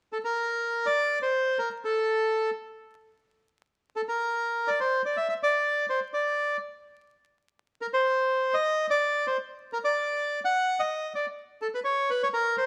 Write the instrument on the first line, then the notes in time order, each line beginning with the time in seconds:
bandoneon
0.13 A4
0.25 A#4
0.86 D5
1.22 C5
1.59 A#4
1.84 A4
3.96 A4
4.08 A#4
4.68 D5
4.80 C5
5.06 D5
5.17 E5
5.29 E5
5.43 D5
5.90 C5
6.14 D5
7.81 A#4
7.93 C5
8.54 D#5
8.90 D5
9.27 C5
9.73 A#4
9.84 D5
10.45 F#5
10.79 D#5
11.15 D5
11.62 A4
11.75 B4
11.84 C#5
12.10 B4
12.23 C#5
12.34 A#4
12.58 C5